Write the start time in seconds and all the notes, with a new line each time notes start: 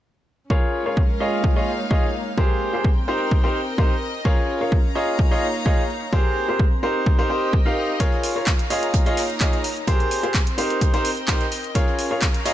0.50 C#4 F4 G#4 A#4 C#5, kick
0.79 G#3 A#4 F5
0.86 F4 G#4 A#4 C#5
0.97 kick
1.20 A#3 F4 G#4 C#5 D#5
1.31 D#4 C#5
1.44 kick
1.56 F4 G#4 C#5 D#5
1.91 F4 G#4 C#5 D#5, kick
2.37 C4 G4 G#4 A#4 C5, kick
2.69 A#4 G5
2.73 G4 G#4 A#4 C5
2.84 kick
3.08 D#4 G4 A#4 C5
3.31 kick
3.44 D#4 G4 A#4 C5
3.61 D#5
3.78 D#4 G4 A#4 C5, kick
4.25 C#4 F4 G#4 A#4 C#5, kick
4.57 F4 G#4 A#4 C#5 F5 A#5
4.72 kick
4.95 A#3 F4 G#4 C#5 D#5
5.07 D#4
5.12 C#5
5.19 kick
5.31 F4 G#4 C#5 D#5
5.66 F4 G#4 C#5 D#5, kick
6.13 C4 G4 G#4 A#4 C5, kick
6.35 A#4
6.48 G4 G#4 A#4 C5
6.59 kick
6.83 D#4 G4 A#4 C5
7.06 kick
7.19 D#4 G4 A#4 C5
7.26 D#4 G4 A#4 C5 D#5
7.36 G5
7.53 kick
7.65 D#4 G4 A#4 F5
8.00 C#4 F4 G#4 A#4 C#5, kick, closed hi-hat
8.10 F5, closed hi-hat
8.23 closed hi-hat, open hi-hat
8.31 A#5
8.36 F4 G#4 A#4 C#5
8.46 kick, snare, clap, closed hi-hat
8.59 closed hi-hat
8.70 A#3 F4 G#4 C#5 D#5, closed hi-hat, open hi-hat
8.81 D#4, closed hi-hat
8.94 C#5, kick, closed hi-hat
9.06 F4 G#4 C#5 D#5, closed hi-hat
9.17 snare, open hi-hat
9.30 closed hi-hat
9.40 F4 G#4 C#5 D#5, kick, snare, clap, closed hi-hat
9.53 closed hi-hat
9.64 closed hi-hat, open hi-hat
9.77 closed hi-hat
9.87 C4 G4 G#4 A#4 C5, kick, closed hi-hat
9.94 A#4
10.00 closed hi-hat
10.11 closed hi-hat, open hi-hat
10.23 G4 G#4 A#4 C5, snare, closed hi-hat
10.34 kick, snare, clap, closed hi-hat
10.47 closed hi-hat
10.58 D#4 G4 A#4 C5, closed hi-hat, open hi-hat
10.70 closed hi-hat
10.81 G5, kick, closed hi-hat
10.94 D#4 G4 A#4 C5, snare, closed hi-hat
10.98 D#5
11.05 closed hi-hat, open hi-hat
11.17 closed hi-hat
11.28 D#4 G4 A#4 C5, kick, snare, clap, closed hi-hat
11.40 snare, closed hi-hat
11.52 closed hi-hat, open hi-hat
11.64 closed hi-hat
11.75 C#4 F4 G#4 A#4 C#5, kick, closed hi-hat
11.87 closed hi-hat
11.93 A#5
11.99 closed hi-hat, open hi-hat
12.07 F4 G#4 A#4 C#5 F5
12.22 kick, snare, clap, closed hi-hat
12.34 closed hi-hat
12.45 A#3 F4 G#4 C#5 D#5, snare, closed hi-hat, open hi-hat